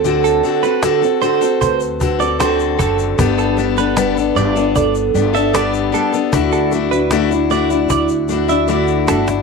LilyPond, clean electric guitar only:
\new Staff \with { instrumentName = "Clean electric guitar" } { \time 4/4 \key d \mixolydian \tempo 4 = 76 r16 a'16 r16 b'16 r8 c''8 c''16 r8 d''16 c''16 r16 a'16 r16 | r16 a'16 r16 b'16 r8 d''8 d''16 r8 e''16 d''16 r16 a'16 r16 | r16 a'16 r16 b'16 r8 d''8 d''16 r8 e''16 d''16 r16 a'16 r16 | }